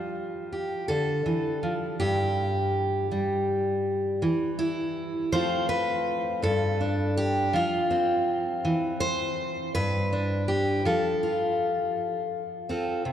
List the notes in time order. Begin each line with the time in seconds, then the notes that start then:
Already playing: F3 G3 G4
0.53 G4
0.88 D3 A4
1.26 E3
1.63 F3
2.00 G2 G4
3.11 G3
4.22 E3
4.59 E4
5.32 F3 A3 C4 F4 C5
5.69 B4
6.42 G2 A4
6.81 D4
7.17 G4
7.53 F3 F4
7.91 C4
8.65 E3
9.00 C5
9.75 G2 B4
10.13 D4
10.48 G4
10.85 F3 A4
11.23 F4
12.69 C4 F4 A4
13.05 C3